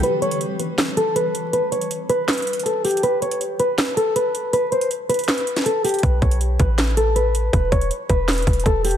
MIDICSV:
0, 0, Header, 1, 4, 480
1, 0, Start_track
1, 0, Tempo, 375000
1, 42, Time_signature, 4, 2, 24, 8
1, 11483, End_track
2, 0, Start_track
2, 0, Title_t, "Steel-string acoustic guitar"
2, 0, Program_c, 0, 25
2, 42, Note_on_c, 0, 71, 92
2, 253, Note_off_c, 0, 71, 0
2, 282, Note_on_c, 0, 73, 83
2, 493, Note_off_c, 0, 73, 0
2, 762, Note_on_c, 0, 71, 71
2, 1213, Note_off_c, 0, 71, 0
2, 1243, Note_on_c, 0, 69, 93
2, 1454, Note_off_c, 0, 69, 0
2, 1483, Note_on_c, 0, 71, 72
2, 1934, Note_off_c, 0, 71, 0
2, 1962, Note_on_c, 0, 71, 92
2, 2173, Note_off_c, 0, 71, 0
2, 2201, Note_on_c, 0, 73, 83
2, 2412, Note_off_c, 0, 73, 0
2, 2681, Note_on_c, 0, 71, 91
2, 3359, Note_off_c, 0, 71, 0
2, 3401, Note_on_c, 0, 69, 79
2, 3613, Note_off_c, 0, 69, 0
2, 3643, Note_on_c, 0, 67, 82
2, 3853, Note_off_c, 0, 67, 0
2, 3884, Note_on_c, 0, 71, 92
2, 4094, Note_off_c, 0, 71, 0
2, 4123, Note_on_c, 0, 73, 84
2, 4334, Note_off_c, 0, 73, 0
2, 4602, Note_on_c, 0, 71, 73
2, 5054, Note_off_c, 0, 71, 0
2, 5081, Note_on_c, 0, 69, 92
2, 5293, Note_off_c, 0, 69, 0
2, 5324, Note_on_c, 0, 71, 73
2, 5774, Note_off_c, 0, 71, 0
2, 5802, Note_on_c, 0, 71, 90
2, 6013, Note_off_c, 0, 71, 0
2, 6042, Note_on_c, 0, 72, 80
2, 6253, Note_off_c, 0, 72, 0
2, 6520, Note_on_c, 0, 71, 89
2, 7198, Note_off_c, 0, 71, 0
2, 7243, Note_on_c, 0, 69, 80
2, 7453, Note_off_c, 0, 69, 0
2, 7481, Note_on_c, 0, 67, 76
2, 7692, Note_off_c, 0, 67, 0
2, 7723, Note_on_c, 0, 71, 94
2, 7933, Note_off_c, 0, 71, 0
2, 7962, Note_on_c, 0, 73, 85
2, 8173, Note_off_c, 0, 73, 0
2, 8442, Note_on_c, 0, 71, 73
2, 8894, Note_off_c, 0, 71, 0
2, 8923, Note_on_c, 0, 69, 87
2, 9134, Note_off_c, 0, 69, 0
2, 9162, Note_on_c, 0, 71, 71
2, 9613, Note_off_c, 0, 71, 0
2, 9641, Note_on_c, 0, 71, 93
2, 9853, Note_off_c, 0, 71, 0
2, 9882, Note_on_c, 0, 73, 87
2, 10093, Note_off_c, 0, 73, 0
2, 10361, Note_on_c, 0, 71, 93
2, 11039, Note_off_c, 0, 71, 0
2, 11082, Note_on_c, 0, 69, 83
2, 11293, Note_off_c, 0, 69, 0
2, 11323, Note_on_c, 0, 67, 80
2, 11483, Note_off_c, 0, 67, 0
2, 11483, End_track
3, 0, Start_track
3, 0, Title_t, "808-style bass"
3, 0, Program_c, 1, 38
3, 7722, Note_on_c, 1, 35, 114
3, 7953, Note_off_c, 1, 35, 0
3, 7962, Note_on_c, 1, 35, 98
3, 8423, Note_off_c, 1, 35, 0
3, 8442, Note_on_c, 1, 33, 103
3, 9594, Note_off_c, 1, 33, 0
3, 9642, Note_on_c, 1, 28, 114
3, 9873, Note_off_c, 1, 28, 0
3, 9883, Note_on_c, 1, 28, 103
3, 10113, Note_off_c, 1, 28, 0
3, 10362, Note_on_c, 1, 28, 102
3, 10823, Note_off_c, 1, 28, 0
3, 10842, Note_on_c, 1, 28, 108
3, 11072, Note_off_c, 1, 28, 0
3, 11081, Note_on_c, 1, 28, 101
3, 11483, Note_off_c, 1, 28, 0
3, 11483, End_track
4, 0, Start_track
4, 0, Title_t, "Drums"
4, 43, Note_on_c, 9, 42, 81
4, 171, Note_off_c, 9, 42, 0
4, 282, Note_on_c, 9, 42, 41
4, 402, Note_off_c, 9, 42, 0
4, 402, Note_on_c, 9, 42, 72
4, 523, Note_off_c, 9, 42, 0
4, 523, Note_on_c, 9, 42, 78
4, 651, Note_off_c, 9, 42, 0
4, 762, Note_on_c, 9, 42, 82
4, 890, Note_off_c, 9, 42, 0
4, 1002, Note_on_c, 9, 38, 115
4, 1004, Note_on_c, 9, 42, 78
4, 1006, Note_on_c, 9, 39, 92
4, 1130, Note_off_c, 9, 38, 0
4, 1132, Note_off_c, 9, 42, 0
4, 1134, Note_off_c, 9, 39, 0
4, 1244, Note_on_c, 9, 42, 74
4, 1372, Note_off_c, 9, 42, 0
4, 1484, Note_on_c, 9, 42, 83
4, 1612, Note_off_c, 9, 42, 0
4, 1724, Note_on_c, 9, 42, 83
4, 1852, Note_off_c, 9, 42, 0
4, 1962, Note_on_c, 9, 42, 81
4, 2090, Note_off_c, 9, 42, 0
4, 2202, Note_on_c, 9, 42, 58
4, 2323, Note_off_c, 9, 42, 0
4, 2323, Note_on_c, 9, 42, 62
4, 2442, Note_off_c, 9, 42, 0
4, 2442, Note_on_c, 9, 42, 78
4, 2570, Note_off_c, 9, 42, 0
4, 2682, Note_on_c, 9, 42, 81
4, 2810, Note_off_c, 9, 42, 0
4, 2922, Note_on_c, 9, 38, 113
4, 2922, Note_on_c, 9, 42, 74
4, 2926, Note_on_c, 9, 39, 93
4, 2982, Note_off_c, 9, 42, 0
4, 2982, Note_on_c, 9, 42, 68
4, 3043, Note_off_c, 9, 42, 0
4, 3043, Note_on_c, 9, 42, 56
4, 3050, Note_off_c, 9, 38, 0
4, 3054, Note_off_c, 9, 39, 0
4, 3102, Note_off_c, 9, 42, 0
4, 3102, Note_on_c, 9, 42, 45
4, 3162, Note_off_c, 9, 42, 0
4, 3162, Note_on_c, 9, 42, 62
4, 3242, Note_off_c, 9, 42, 0
4, 3242, Note_on_c, 9, 42, 58
4, 3322, Note_off_c, 9, 42, 0
4, 3322, Note_on_c, 9, 42, 58
4, 3404, Note_off_c, 9, 42, 0
4, 3404, Note_on_c, 9, 42, 82
4, 3532, Note_off_c, 9, 42, 0
4, 3642, Note_on_c, 9, 42, 70
4, 3644, Note_on_c, 9, 46, 90
4, 3722, Note_off_c, 9, 42, 0
4, 3722, Note_on_c, 9, 42, 68
4, 3772, Note_off_c, 9, 46, 0
4, 3802, Note_off_c, 9, 42, 0
4, 3802, Note_on_c, 9, 42, 65
4, 3882, Note_off_c, 9, 42, 0
4, 3882, Note_on_c, 9, 42, 77
4, 4010, Note_off_c, 9, 42, 0
4, 4122, Note_on_c, 9, 42, 43
4, 4242, Note_off_c, 9, 42, 0
4, 4242, Note_on_c, 9, 42, 74
4, 4362, Note_off_c, 9, 42, 0
4, 4362, Note_on_c, 9, 42, 79
4, 4490, Note_off_c, 9, 42, 0
4, 4601, Note_on_c, 9, 42, 83
4, 4729, Note_off_c, 9, 42, 0
4, 4842, Note_on_c, 9, 38, 119
4, 4843, Note_on_c, 9, 42, 76
4, 4846, Note_on_c, 9, 39, 91
4, 4970, Note_off_c, 9, 38, 0
4, 4971, Note_off_c, 9, 42, 0
4, 4974, Note_off_c, 9, 39, 0
4, 5083, Note_on_c, 9, 42, 69
4, 5211, Note_off_c, 9, 42, 0
4, 5324, Note_on_c, 9, 42, 82
4, 5452, Note_off_c, 9, 42, 0
4, 5564, Note_on_c, 9, 42, 80
4, 5692, Note_off_c, 9, 42, 0
4, 5802, Note_on_c, 9, 42, 79
4, 5930, Note_off_c, 9, 42, 0
4, 6042, Note_on_c, 9, 42, 42
4, 6162, Note_off_c, 9, 42, 0
4, 6162, Note_on_c, 9, 42, 73
4, 6282, Note_off_c, 9, 42, 0
4, 6282, Note_on_c, 9, 42, 81
4, 6410, Note_off_c, 9, 42, 0
4, 6522, Note_on_c, 9, 42, 86
4, 6582, Note_off_c, 9, 42, 0
4, 6582, Note_on_c, 9, 42, 70
4, 6642, Note_off_c, 9, 42, 0
4, 6642, Note_on_c, 9, 42, 61
4, 6702, Note_off_c, 9, 42, 0
4, 6702, Note_on_c, 9, 42, 48
4, 6762, Note_off_c, 9, 42, 0
4, 6762, Note_on_c, 9, 38, 116
4, 6762, Note_on_c, 9, 42, 78
4, 6766, Note_on_c, 9, 39, 94
4, 6882, Note_off_c, 9, 42, 0
4, 6882, Note_on_c, 9, 42, 45
4, 6890, Note_off_c, 9, 38, 0
4, 6894, Note_off_c, 9, 39, 0
4, 7002, Note_off_c, 9, 42, 0
4, 7002, Note_on_c, 9, 42, 61
4, 7122, Note_off_c, 9, 42, 0
4, 7122, Note_on_c, 9, 42, 60
4, 7123, Note_on_c, 9, 38, 76
4, 7244, Note_off_c, 9, 42, 0
4, 7244, Note_on_c, 9, 42, 83
4, 7251, Note_off_c, 9, 38, 0
4, 7372, Note_off_c, 9, 42, 0
4, 7482, Note_on_c, 9, 42, 70
4, 7484, Note_on_c, 9, 46, 87
4, 7542, Note_off_c, 9, 42, 0
4, 7542, Note_on_c, 9, 42, 68
4, 7602, Note_off_c, 9, 42, 0
4, 7602, Note_on_c, 9, 42, 69
4, 7612, Note_off_c, 9, 46, 0
4, 7662, Note_off_c, 9, 42, 0
4, 7662, Note_on_c, 9, 42, 66
4, 7722, Note_off_c, 9, 42, 0
4, 7722, Note_on_c, 9, 36, 107
4, 7722, Note_on_c, 9, 42, 83
4, 7850, Note_off_c, 9, 36, 0
4, 7850, Note_off_c, 9, 42, 0
4, 7962, Note_on_c, 9, 36, 103
4, 7962, Note_on_c, 9, 42, 42
4, 8082, Note_off_c, 9, 42, 0
4, 8082, Note_on_c, 9, 42, 73
4, 8090, Note_off_c, 9, 36, 0
4, 8202, Note_off_c, 9, 42, 0
4, 8202, Note_on_c, 9, 42, 78
4, 8330, Note_off_c, 9, 42, 0
4, 8441, Note_on_c, 9, 42, 83
4, 8442, Note_on_c, 9, 36, 93
4, 8569, Note_off_c, 9, 42, 0
4, 8570, Note_off_c, 9, 36, 0
4, 8682, Note_on_c, 9, 38, 117
4, 8683, Note_on_c, 9, 42, 78
4, 8686, Note_on_c, 9, 39, 95
4, 8810, Note_off_c, 9, 38, 0
4, 8811, Note_off_c, 9, 42, 0
4, 8814, Note_off_c, 9, 39, 0
4, 8924, Note_on_c, 9, 42, 72
4, 9052, Note_off_c, 9, 42, 0
4, 9164, Note_on_c, 9, 42, 81
4, 9292, Note_off_c, 9, 42, 0
4, 9405, Note_on_c, 9, 42, 85
4, 9533, Note_off_c, 9, 42, 0
4, 9642, Note_on_c, 9, 36, 113
4, 9643, Note_on_c, 9, 42, 79
4, 9770, Note_off_c, 9, 36, 0
4, 9771, Note_off_c, 9, 42, 0
4, 9882, Note_on_c, 9, 36, 104
4, 9882, Note_on_c, 9, 42, 58
4, 10003, Note_off_c, 9, 42, 0
4, 10003, Note_on_c, 9, 42, 60
4, 10010, Note_off_c, 9, 36, 0
4, 10122, Note_off_c, 9, 42, 0
4, 10122, Note_on_c, 9, 42, 79
4, 10250, Note_off_c, 9, 42, 0
4, 10361, Note_on_c, 9, 42, 84
4, 10362, Note_on_c, 9, 36, 95
4, 10489, Note_off_c, 9, 42, 0
4, 10490, Note_off_c, 9, 36, 0
4, 10602, Note_on_c, 9, 38, 117
4, 10602, Note_on_c, 9, 42, 77
4, 10606, Note_on_c, 9, 39, 91
4, 10662, Note_off_c, 9, 42, 0
4, 10662, Note_on_c, 9, 42, 67
4, 10722, Note_off_c, 9, 42, 0
4, 10722, Note_on_c, 9, 42, 57
4, 10730, Note_off_c, 9, 38, 0
4, 10734, Note_off_c, 9, 39, 0
4, 10782, Note_off_c, 9, 42, 0
4, 10782, Note_on_c, 9, 42, 46
4, 10842, Note_off_c, 9, 42, 0
4, 10842, Note_on_c, 9, 36, 99
4, 10842, Note_on_c, 9, 42, 61
4, 10922, Note_off_c, 9, 42, 0
4, 10922, Note_on_c, 9, 42, 60
4, 10970, Note_off_c, 9, 36, 0
4, 11002, Note_off_c, 9, 42, 0
4, 11002, Note_on_c, 9, 42, 57
4, 11081, Note_on_c, 9, 36, 92
4, 11084, Note_off_c, 9, 42, 0
4, 11084, Note_on_c, 9, 42, 80
4, 11209, Note_off_c, 9, 36, 0
4, 11212, Note_off_c, 9, 42, 0
4, 11322, Note_on_c, 9, 42, 69
4, 11324, Note_on_c, 9, 46, 88
4, 11402, Note_off_c, 9, 42, 0
4, 11402, Note_on_c, 9, 42, 68
4, 11452, Note_off_c, 9, 46, 0
4, 11483, Note_off_c, 9, 42, 0
4, 11483, End_track
0, 0, End_of_file